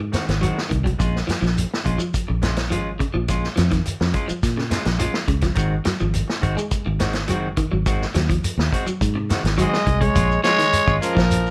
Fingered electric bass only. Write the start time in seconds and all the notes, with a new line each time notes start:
Already playing: G#2
0.29 G#1
0.71 C2
1.00 A#1
1.42 A#1
1.86 A#1
2.14 muted fingered electric bass stroke
2.30 A#1
2.72 G#1
3.15 A#1
3.58 F2
4.01 F2
4.31 muted fingered electric bass stroke
4.43 A#2
4.86 A#1
5.28 C#2
5.56 G#1
6.02 G#1
6.43 G#1
6.71 muted fingered electric bass stroke
6.87 G#1
7.30 F#1
7.73 G#1
8.15 D#2
8.58 D#2
8.87 muted fingered electric bass stroke
9.01 G#2
9.44 G#1
9.87 C2
10.16 A#1
10.87 G#1
11.17 A#1